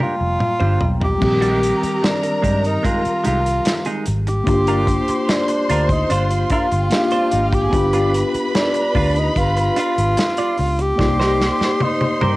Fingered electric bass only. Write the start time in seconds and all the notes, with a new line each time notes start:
0.21 F1
0.61 G1
0.82 B1
1.22 A#1
1.83 muted fingered electric bass stroke
2.44 G2
3.06 muted fingered electric bass stroke
3.27 C2
4.08 G#1
4.48 G1
5.09 muted fingered electric bass stroke
5.70 D2
6.11 G1
6.72 G1
7.33 G#1
7.73 G1
8.34 muted fingered electric bass stroke
8.95 D2
9.36 G1
9.98 G#1
10.59 C#2
11.00 C2
11.61 muted fingered electric bass stroke
12.23 G2